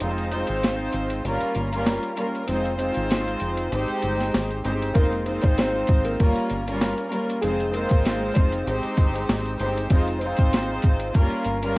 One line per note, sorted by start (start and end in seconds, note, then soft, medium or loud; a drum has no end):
0.00 0.42 F1 loud
0.00 0.29 G#3 medium
0.00 0.29 C4 medium
0.00 0.29 D#4 medium
0.00 0.30 F4 medium
0.00 0.30 C5 loud
0.00 closed hi-hat medium
0.18 closed hi-hat soft
0.32 1.25 G#3 medium
0.32 1.25 C4 medium
0.32 1.25 D#4 medium
0.32 1.25 F4 medium
0.32 1.25 C5 loud
0.32 closed hi-hat medium
0.47 0.87 G#1 medium
0.47 closed hi-hat soft
0.63 snare loud
0.63 closed hi-hat medium
0.93 1.20 G#1 medium
0.93 closed hi-hat medium
1.10 closed hi-hat medium
1.25 1.39 G1 loud
1.25 1.69 G3 loud
1.25 1.69 A#3 medium
1.25 1.69 C#4 medium
1.25 1.69 F4 medium
1.25 1.70 A#4 loud
1.25 closed hi-hat medium
1.41 muted fingered electric bass stroke soft
1.41 closed hi-hat soft
1.55 1.97 G1 medium
1.55 closed hi-hat medium
1.72 2.14 G3 loud
1.72 2.14 A#3 medium
1.72 2.14 C#4 medium
1.72 2.14 F4 medium
1.72 2.14 A#4 loud
1.72 closed hi-hat medium
1.87 snare loud
1.87 closed hi-hat medium
2.03 closed hi-hat soft
2.16 2.45 G3 medium
2.16 2.45 A#3 medium
2.16 2.45 C#4 medium
2.16 2.46 F4 medium
2.16 2.46 A#4 medium
2.16 closed hi-hat medium
2.35 closed hi-hat medium
2.48 2.90 F1 loud
2.48 2.75 G#3 medium
2.48 2.76 C4 medium
2.48 2.76 D#4 medium
2.48 2.76 F4 medium
2.48 2.77 C5 loud
2.48 closed hi-hat loud
2.65 closed hi-hat soft
2.76 3.70 G#3 loud
2.76 3.71 C4 medium
2.76 3.71 D#4 medium
2.76 3.71 F4 medium
2.76 3.71 C5 loud
2.76 closed hi-hat medium
2.94 3.35 G#1 medium
2.94 closed hi-hat soft
3.11 snare loud
3.11 closed hi-hat medium
3.28 closed hi-hat soft
3.40 3.68 F1 medium
3.40 closed hi-hat medium
3.57 closed hi-hat medium
3.72 3.87 G#1 loud
3.72 4.58 G#3 loud
3.72 4.58 C4 medium
3.72 4.58 D#4 medium
3.72 4.58 G4 medium
3.72 4.59 C5 loud
3.72 closed hi-hat medium
3.88 closed hi-hat soft
4.02 4.29 G1 loud
4.02 closed hi-hat medium
4.20 snare soft
4.20 closed hi-hat medium
4.34 4.60 G#1 medium
4.34 snare loud
4.34 closed hi-hat medium
4.50 closed hi-hat soft
4.64 4.91 G1 loud
4.64 4.93 G#3 medium
4.64 4.93 C4 medium
4.64 4.93 D#4 medium
4.64 4.94 G4 medium
4.64 4.94 C5 medium
4.64 closed hi-hat medium
4.82 closed hi-hat medium
4.94 5.37 F1 loud
4.94 5.24 G#3 medium
4.94 5.41 A#3 medium
4.94 5.24 C4 medium
4.94 5.24 D#4 medium
4.94 5.25 F4 medium
4.94 5.40 A#4 loud
4.94 5.25 C5 loud
4.94 kick loud
4.94 closed hi-hat medium
5.13 closed hi-hat soft
5.26 6.19 G#3 medium
5.26 6.19 C4 medium
5.26 6.20 D#4 medium
5.26 6.20 F4 medium
5.26 6.20 C5 loud
5.26 closed hi-hat medium
5.42 5.82 G#1 medium
5.42 5.56 C4 medium
5.42 5.55 C5 medium
5.42 kick medium
5.42 closed hi-hat soft
5.58 6.04 C4 medium
5.58 6.03 C5 medium
5.58 snare loud
5.58 closed hi-hat medium
5.87 6.15 G#1 medium
5.87 kick loud
5.87 closed hi-hat medium
6.05 7.39 A#3 medium
6.05 7.39 A#4 medium
6.05 closed hi-hat medium
6.20 6.35 G1 loud
6.20 6.64 G3 medium
6.20 6.64 A#3 medium
6.20 6.64 C#4 medium
6.20 6.64 F4 medium
6.20 6.64 A#4 loud
6.20 kick medium
6.20 closed hi-hat medium
6.35 muted fingered electric bass stroke soft
6.35 closed hi-hat soft
6.50 6.92 G1 medium
6.50 closed hi-hat medium
6.67 7.09 G3 loud
6.67 7.09 A#3 medium
6.67 7.09 C#4 medium
6.67 7.09 F4 medium
6.67 7.09 A#4 loud
6.67 closed hi-hat medium
6.81 snare loud
6.81 closed hi-hat medium
6.98 closed hi-hat soft
7.11 7.40 G3 medium
7.11 7.40 A#3 medium
7.11 7.40 C#4 medium
7.11 7.41 F4 medium
7.11 7.41 A#4 medium
7.11 closed hi-hat medium
7.30 closed hi-hat medium
7.41 7.85 F1 loud
7.41 7.70 G#3 medium
7.41 7.71 C4 medium
7.41 7.71 D#4 medium
7.41 7.71 F4 medium
7.41 7.70 G#4 loud
7.41 7.72 C5 loud
7.41 closed hi-hat medium
7.60 closed hi-hat soft
7.71 8.65 G#3 loud
7.71 8.32 A#3 medium
7.71 8.66 C4 medium
7.71 8.66 D#4 medium
7.71 8.66 F4 loud
7.71 8.32 A#4 medium
7.71 8.66 C5 loud
7.71 closed hi-hat medium
7.89 8.30 G#1 medium
7.89 kick medium
7.89 closed hi-hat soft
8.05 snare loud
8.05 closed hi-hat medium
8.34 8.63 F1 medium
8.34 8.81 C4 medium
8.34 8.80 C5 medium
8.34 kick loud
8.34 closed hi-hat medium
8.52 closed hi-hat medium
8.67 8.82 G#1 loud
8.67 9.53 G#3 loud
8.67 9.53 C4 medium
8.67 9.53 D#4 medium
8.67 9.53 G4 medium
8.67 9.54 C5 loud
8.67 closed hi-hat medium
8.83 closed hi-hat soft
8.97 9.24 G1 loud
8.97 kick medium
8.97 closed hi-hat medium
9.15 closed hi-hat medium
9.29 9.55 G#1 loud
9.29 snare loud
9.29 closed hi-hat medium
9.45 closed hi-hat soft
9.59 9.86 G1 loud
9.59 9.88 G#3 medium
9.59 9.88 C4 medium
9.59 9.88 D#4 medium
9.59 9.88 G4 medium
9.59 9.89 C5 medium
9.59 closed hi-hat medium
9.77 closed hi-hat medium
9.90 10.32 F1 loud
9.90 10.19 G#3 medium
9.90 10.19 C4 medium
9.90 10.19 D#4 medium
9.90 10.19 F4 medium
9.90 10.20 C5 loud
9.90 kick loud
9.90 closed hi-hat medium
10.08 closed hi-hat soft
10.21 11.14 G#3 medium
10.21 11.14 C4 medium
10.21 11.15 D#4 medium
10.21 11.14 F4 medium
10.21 11.15 C5 loud
10.21 closed hi-hat medium
10.37 10.77 G#1 medium
10.37 kick medium
10.37 closed hi-hat medium
10.53 snare loud
10.53 closed hi-hat medium
10.82 11.10 G#1 medium
10.82 kick loud
10.82 closed hi-hat medium
10.99 closed hi-hat medium
11.14 11.29 G1 loud
11.14 11.59 G3 loud
11.14 11.59 A#3 medium
11.14 11.59 C#4 medium
11.14 11.59 F4 medium
11.14 11.59 A#4 loud
11.14 kick medium
11.14 closed hi-hat medium
11.30 muted fingered electric bass stroke soft
11.30 closed hi-hat soft
11.44 11.78 G1 medium
11.44 closed hi-hat medium
11.62 11.78 G3 loud
11.62 11.78 A#3 medium
11.62 11.78 C#4 medium
11.62 11.78 F4 medium
11.62 11.78 A#4 loud
11.62 closed hi-hat medium